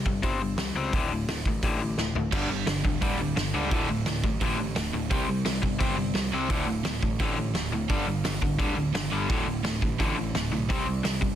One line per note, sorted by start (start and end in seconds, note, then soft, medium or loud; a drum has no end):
0.06 0.22 G1 medium
0.06 0.21 C3 medium
0.06 0.22 G3 medium
0.06 kick medium
0.22 0.55 G1 loud
0.22 0.39 C3 medium
0.22 0.40 G3 medium
0.22 0.40 C4 medium
0.22 kick loud
0.22 open hi-hat medium
0.41 0.57 C3 medium
0.41 0.57 G3 medium
0.56 0.73 C2 medium
0.56 0.74 C3 medium
0.56 0.74 G3 medium
0.56 snare loud
0.56 open hi-hat medium
0.74 0.91 C#2 medium
0.74 0.92 C3 medium
0.74 0.92 G3 medium
0.74 0.93 C4 loud
0.93 1.08 D1 medium
0.93 1.10 D2 medium
0.93 1.10 A2 medium
0.93 1.10 D3 loud
0.93 kick loud
0.93 open hi-hat medium
1.09 1.25 D1 medium
1.09 1.26 D2 medium
1.09 1.27 A2 medium
1.26 1.43 D1 medium
1.26 1.44 D2 medium
1.26 1.44 A2 medium
1.26 snare loud
1.26 open hi-hat medium
1.45 1.61 A1 medium
1.45 1.62 D2 medium
1.45 1.62 A2 medium
1.45 kick medium
1.63 1.95 A1 medium
1.63 1.80 D2 medium
1.63 1.80 A2 medium
1.63 1.80 D3 medium
1.63 kick loud
1.63 open hi-hat medium
1.81 1.96 D2 medium
1.81 1.96 A2 medium
1.96 2.13 D1 medium
1.96 2.14 D2 medium
1.96 2.14 A2 medium
1.96 snare medium
2.14 2.30 D1 medium
2.14 2.31 D2 medium
2.14 2.31 A2 medium
2.14 floor tom medium
2.32 2.48 G1 medium
2.32 2.49 G2 medium
2.32 2.49 D3 medium
2.32 2.49 G3 medium
2.32 kick loud
2.32 open hi-hat medium
2.32 crash medium
2.48 2.65 G1 medium
2.48 2.65 G2 medium
2.48 2.66 D3 medium
2.66 2.83 G1 medium
2.66 2.82 G2 medium
2.66 2.83 D3 medium
2.66 snare loud
2.66 open hi-hat medium
2.85 3.01 D1 medium
2.85 3.00 G2 medium
2.85 3.00 D3 medium
2.85 kick medium
3.01 3.34 D1 medium
3.01 3.18 G2 medium
3.01 3.18 D3 medium
3.01 3.19 G3 medium
3.01 kick loud
3.01 open hi-hat medium
3.20 3.35 G2 medium
3.20 3.35 D3 medium
3.36 3.52 G1 medium
3.36 3.52 G2 medium
3.36 3.52 D3 medium
3.36 snare loud
3.36 open hi-hat medium
3.54 3.70 C#2 medium
3.54 3.70 G2 medium
3.54 3.71 D3 medium
3.54 3.71 G3 medium
3.71 3.87 D1 medium
3.71 3.88 D2 medium
3.71 3.88 A2 medium
3.71 3.89 D3 loud
3.71 kick loud
3.71 open hi-hat medium
3.89 4.05 D1 medium
3.89 4.05 D2 medium
3.89 4.05 A2 medium
4.06 4.22 D1 medium
4.06 4.22 D2 medium
4.06 4.23 A2 medium
4.06 snare loud
4.06 open hi-hat medium
4.24 4.40 A1 medium
4.24 4.40 D2 medium
4.24 4.40 A2 medium
4.24 kick medium
4.41 4.73 A1 loud
4.41 4.58 D2 medium
4.41 4.58 A2 medium
4.41 4.58 D3 loud
4.41 kick loud
4.41 open hi-hat medium
4.59 4.74 D2 medium
4.59 4.75 A2 medium
4.76 4.92 D1 medium
4.76 4.92 D2 medium
4.76 4.92 A2 medium
4.76 snare loud
4.76 open hi-hat medium
4.93 5.09 D1 medium
4.93 5.09 D2 medium
4.93 5.09 A2 medium
5.10 5.27 C2 medium
5.10 5.27 C3 medium
5.10 5.27 G3 medium
5.10 5.28 C4 medium
5.10 kick loud
5.10 open hi-hat medium
5.28 5.44 C2 loud
5.28 5.44 C3 medium
5.28 5.44 G3 medium
5.45 5.61 C2 medium
5.45 5.61 C3 medium
5.45 5.61 G3 medium
5.45 snare loud
5.45 open hi-hat medium
5.62 5.79 G1 medium
5.62 5.78 C3 medium
5.62 5.78 G3 medium
5.62 kick medium
5.79 6.12 G1 medium
5.79 5.95 C3 medium
5.79 5.96 G3 medium
5.79 5.96 C4 medium
5.79 kick loud
5.79 open hi-hat medium
5.96 6.13 C3 medium
5.96 6.13 G3 medium
6.14 6.31 C2 medium
6.14 6.31 C3 medium
6.14 6.31 G3 medium
6.14 snare loud
6.14 open hi-hat medium
6.33 6.49 C2 medium
6.33 6.49 C3 medium
6.33 6.50 G3 medium
6.33 6.50 C4 medium
6.50 6.66 D1 medium
6.50 6.67 D2 medium
6.50 6.67 A2 medium
6.50 6.67 D3 medium
6.50 kick loud
6.50 open hi-hat medium
6.67 6.83 D1 medium
6.67 6.83 D2 medium
6.67 6.84 A2 medium
6.85 7.01 D1 medium
6.85 7.01 D2 medium
6.85 7.01 A2 medium
6.85 snare loud
6.85 open hi-hat medium
7.03 7.19 A1 medium
7.03 7.18 D2 medium
7.03 7.18 A2 medium
7.03 kick medium
7.20 7.52 A1 medium
7.20 7.36 D2 medium
7.20 7.37 A2 medium
7.20 7.37 D3 loud
7.20 kick loud
7.20 open hi-hat medium
7.37 7.53 D2 medium
7.37 7.53 A2 medium
7.54 7.70 D1 medium
7.54 7.71 D2 medium
7.54 7.71 A2 medium
7.54 snare loud
7.54 open hi-hat medium
7.71 7.88 D1 medium
7.71 7.88 D2 medium
7.71 7.88 A2 medium
7.89 8.06 G1 medium
7.89 8.06 G2 medium
7.89 8.06 D3 medium
7.89 8.07 G3 medium
7.89 kick loud
7.89 open hi-hat medium
8.07 8.23 G1 medium
8.07 8.23 G2 medium
8.07 8.23 D3 medium
8.25 8.41 G1 medium
8.25 8.40 G2 medium
8.25 8.41 D3 medium
8.25 snare loud
8.25 open hi-hat medium
8.42 8.58 D1 medium
8.42 8.57 G2 medium
8.42 8.58 D3 medium
8.42 kick medium
8.59 8.92 D1 medium
8.59 8.75 G2 medium
8.59 8.76 D3 medium
8.59 8.76 G3 medium
8.59 kick loud
8.59 open hi-hat medium
8.77 8.93 G2 medium
8.77 8.93 D3 medium
8.94 9.11 G1 medium
8.94 9.10 G2 medium
8.94 9.10 D3 medium
8.94 snare loud
8.94 open hi-hat medium
9.12 9.28 G1 medium
9.12 9.28 G2 medium
9.12 9.29 D3 medium
9.12 9.29 G3 loud
9.29 9.45 D1 medium
9.29 9.46 D2 medium
9.29 9.46 A2 medium
9.29 9.46 D3 medium
9.29 kick loud
9.29 open hi-hat medium
9.45 9.62 D1 medium
9.45 9.63 D2 medium
9.45 9.63 A2 medium
9.63 9.80 D1 medium
9.63 9.80 D2 medium
9.63 9.80 A2 medium
9.63 snare loud
9.63 open hi-hat medium
9.82 9.98 A1 medium
9.82 9.98 D2 medium
9.82 9.98 A2 medium
9.82 kick medium
9.99 10.32 A1 loud
9.99 10.16 D2 medium
9.99 10.16 A2 medium
9.99 10.16 D3 medium
9.99 kick loud
9.99 open hi-hat medium
10.17 10.33 D2 medium
10.17 10.33 A2 medium
10.34 10.50 D1 medium
10.34 10.50 D2 medium
10.34 10.51 A2 medium
10.34 snare loud
10.34 open hi-hat medium
10.51 10.67 B1 medium
10.51 10.68 D2 medium
10.51 10.68 A2 medium
10.69 10.85 C2 loud
10.69 10.86 C3 medium
10.69 10.86 G3 medium
10.69 10.86 C4 loud
10.69 kick loud
10.69 open hi-hat medium
10.85 11.02 C2 medium
10.85 11.02 C3 medium
10.85 11.03 G3 medium
11.03 11.20 C2 medium
11.03 11.20 C3 medium
11.03 11.20 G3 medium
11.03 snare loud
11.03 open hi-hat medium
11.21 11.35 G1 medium
11.21 11.35 C3 medium
11.21 11.35 G3 medium
11.21 kick medium